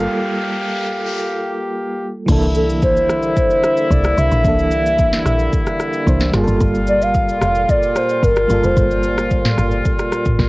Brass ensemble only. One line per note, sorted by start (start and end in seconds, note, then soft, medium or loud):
0.00 2.11 A#3 medium
0.00 2.11 G4 medium
0.00 2.11 F5 medium
2.28 6.30 D3 medium
2.28 10.49 G3 medium
2.28 6.30 A#3 medium
2.28 6.30 E4 medium
6.34 10.49 A#2 medium
6.34 10.49 F4 medium